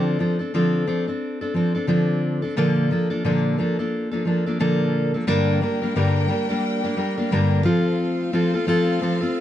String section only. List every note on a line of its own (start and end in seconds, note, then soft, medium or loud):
5.28 7.63 A#3 medium
5.28 7.63 D4 medium
5.28 7.63 G4 medium
5.28 7.63 D5 medium
5.28 7.63 G5 medium
7.64 9.40 A3 medium
7.64 9.40 C4 medium
7.64 9.40 F4 medium
7.64 9.40 C5 medium
7.64 9.40 F5 medium